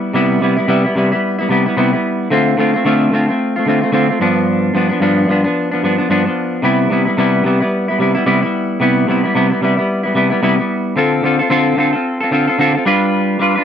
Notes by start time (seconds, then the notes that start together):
Already playing: G3 B3 E4
0.13 C3 G3 B3 E4
0.41 C3 G3 B3 E4
0.56 G3 B3 E4
0.67 C3 G3 B3 E4
0.84 G3 B3 E4
0.95 C3 G3 B3 E4
1.12 G3 B3 E4
1.39 G3 B3 E4
1.49 C3 G3 B3 E4
1.66 G3 B3 E4
1.76 C3 G3 B3 E4
1.93 G3 B3 E4
2.30 D3 A3 C4 F4
2.57 D3 A3 C4 F4
2.74 A3 C4 F4
2.85 D3 A3 C4 F4
3.11 D3 A3 C4 F4
3.28 A3 C4 F4
3.56 A3 C4 F4
3.66 D3 A3 C4 F4
3.82 A3 C4 F4
3.92 D3 A3 C4 F4
4.09 A3 C4 F4
4.20 G2 F3 B3 D4
4.74 G2 F3 B3 D4
4.89 F3 B3 D4
5.00 G2 F3 B3 D4
5.28 G2 F3 B3 D4
5.44 F3 B3 D4
5.71 F3 B3 D4
5.82 G2 F3 B3 D4
5.98 F3 B3 D4
6.09 G2 F3 B3 D4
6.25 F3 B3 D4
6.62 C3 G3 B3 E4
6.90 C3 G3 B3 E4
7.05 B3 E4
7.09 G3
7.17 C3 G3 B3 E4
7.44 C3 G3 B3 E4
7.60 G3 B3 E4
7.88 G3 B3 E4
7.99 C3 G3 B3 E4
8.15 G3 B3 E4
8.26 C3 G3 B3 E4
8.42 G3 B3 E4
8.80 C3 G3 B3 E4
9.07 C3 G3 B3 E4
9.24 G3 B3 E4
9.35 C3 G3 B3 E4
9.50 B3 E4
9.54 G3
9.61 C3 G3 B3 E4
9.77 G3 B3 E4
10.03 G3 B3 E4
10.14 C3 G3 B3 E4
10.30 G3 B3 E4
10.42 C3 G3 B3 E4
10.58 G3 B3 E4
10.96 D3 C4 F4 A4
11.23 D3 C4 F4 A4
11.39 C4 F4 A4
11.50 D3 C4 F4 A4
11.76 D3 C4 F4 A4
11.93 C4 F4 A4
12.20 C4 F4 A4
12.31 D3 C4 F4 A4
12.47 C4 F4 A4
12.58 D3 C4 F4 A4
12.77 C4 F4
12.85 G3 D4 F4 B4
13.39 G3 D4 F4 B4
13.55 D4 F4 B4